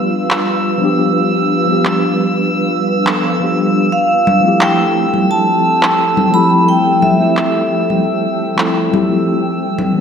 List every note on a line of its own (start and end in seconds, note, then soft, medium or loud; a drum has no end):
0.00 0.76 F3 medium
0.00 0.77 G3 medium
0.00 9.40 G3 medium
0.00 0.78 B3 medium
0.00 0.79 D4 medium
0.00 3.88 D4 medium
0.00 3.88 F4 medium
0.00 0.80 G4 medium
0.00 3.88 B4 medium
0.00 3.88 F5 medium
0.00 10.01 E6 medium
0.31 clap medium
0.78 1.62 F3 medium
0.78 1.63 G3 medium
0.78 1.64 B3 medium
0.83 1.65 D4 medium
0.83 1.66 G4 medium
1.65 3.01 F3 medium
1.65 3.02 G3 medium
1.65 3.03 B3 medium
1.71 3.04 D4 medium
1.71 3.05 G4 medium
1.85 clap medium
3.05 3.36 F3 medium
3.05 3.37 G3 medium
3.05 3.37 B3 medium
3.05 3.38 D4 medium
3.05 3.38 A4 medium
3.05 clap medium
3.40 3.90 F3 medium
3.40 3.90 G3 medium
3.40 3.90 B3 medium
3.40 3.91 D4 medium
3.40 3.91 G4 medium
3.92 9.40 F3 medium
3.92 9.40 C4 medium
3.92 9.40 A4 medium
3.92 4.63 F5 medium
3.92 9.40 G5 medium
4.27 high conga medium
4.40 6.27 F3 medium
4.40 6.28 A3 medium
4.40 6.29 C4 medium
4.46 6.30 E4 medium
4.46 6.31 G4 medium
4.61 5.26 G5 medium
4.61 clap medium
5.14 high conga medium
5.31 6.37 A5 medium
5.83 clap medium
6.17 high conga medium
6.30 7.14 F3 medium
6.30 7.15 A3 medium
6.30 7.16 C4 medium
6.34 7.17 E4 medium
6.34 7.18 G4 medium
6.34 6.66 B5 medium
6.68 7.04 G5 medium
7.02 8.36 E5 medium
7.02 high conga medium
7.16 8.53 F3 medium
7.16 8.54 A3 medium
7.16 8.55 C4 medium
7.22 8.56 E4 medium
7.22 8.56 G4 medium
7.37 clap medium
7.90 high conga medium
8.56 8.87 F3 medium
8.56 8.88 A3 medium
8.56 8.88 C4 medium
8.56 8.89 E4 medium
8.56 8.89 A4 medium
8.56 clap medium
8.91 9.41 F3 medium
8.91 9.41 A3 medium
8.91 9.42 C4 medium
8.91 9.42 E4 medium
8.91 9.43 G4 medium
8.91 high conga medium
9.43 10.01 G3 medium
9.43 10.01 E4 medium
9.43 10.01 B4 medium
9.43 10.01 E5 medium
9.79 high conga medium
9.93 10.01 E3 medium
9.93 10.01 G3 medium
9.93 10.01 B3 medium